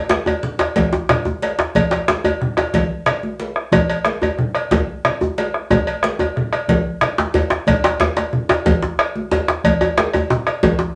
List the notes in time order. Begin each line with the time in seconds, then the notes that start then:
0.09 bombo rim, djembe slap
0.26 cowbell, djembe tone
0.43 bombo rim, high conga, low conga
0.59 bombo rim, cowbell, djembe slap
0.76 bombo rim, bombo low, cowbell, djembe slap, high conga, djembe bass
0.93 djembe slap
1.09 bombo rim, cowbell, djembe slap, low conga
1.25 djembe tone
1.42 cowbell, djembe slap
1.59 bombo rim, djembe slap
1.75 bombo low, cowbell, high conga, low conga, djembe bass
1.91 cowbell, djembe slap
2.08 bombo rim, djembe slap
2.24 cowbell, djembe tone
2.41 bombo rim, high conga, low conga
2.57 bombo rim, cowbell, djembe slap
2.73 bombo rim, bombo low, cowbell, djembe slap, high conga, djembe bass
2.91 high conga
3.06 bombo rim, cowbell, low conga
3.23 djembe tone
3.40 djembe slap
3.56 bombo rim
3.72 bombo low, cowbell, high conga, djembe tone, low conga, djembe bass
3.90 cowbell
4.05 bombo rim, djembe slap
4.21 cowbell, djembe tone
4.38 bombo rim, high conga, low conga
4.55 bombo rim, cowbell
4.71 bombo rim, bombo low, cowbell, djembe slap, djembe tone, high conga, djembe bass
4.89 high conga
5.05 bombo rim, cowbell, low conga
5.21 djembe tone
5.38 cowbell, djembe slap
5.54 bombo rim
5.70 bombo low, cowbell, djembe tone, high conga, djembe bass, low conga
5.87 cowbell
6.03 bombo rim, djembe slap
6.19 cowbell, djembe slap, djembe tone
6.36 bombo rim, low conga
6.53 bombo rim, cowbell, djembe slap
6.68 bombo low, cowbell, djembe slap, high conga, djembe bass
7.01 bombo rim, cowbell, low conga
7.18 djembe slap, djembe tone
7.34 cowbell, djembe slap, high conga, djembe bass
7.50 bombo rim, djembe slap
7.67 bombo low, cowbell, high conga, djembe bass, low conga
7.84 cowbell, djembe slap
8.00 bombo rim, djembe slap, djembe bass
8.17 cowbell, djembe slap, djembe tone
8.33 bombo rim, high conga, low conga
8.49 bombo rim, cowbell, djembe slap
8.66 bombo rim, bombo low, cowbell, djembe slap, high conga, djembe bass
8.82 djembe slap
8.99 bombo rim, cowbell
9.15 djembe tone
9.31 cowbell, djembe slap, djembe tone
9.48 bombo rim, djembe slap
9.64 bombo low, cowbell, high conga, djembe bass, low conga
9.81 cowbell, djembe tone
9.97 bombo rim, djembe slap
10.13 cowbell, djembe tone
10.30 bombo rim, djembe slap, high conga, low conga
10.47 bombo rim, cowbell
10.63 bombo rim, bombo low, cowbell, djembe slap, djembe tone, high conga, djembe bass
10.79 djembe slap, high conga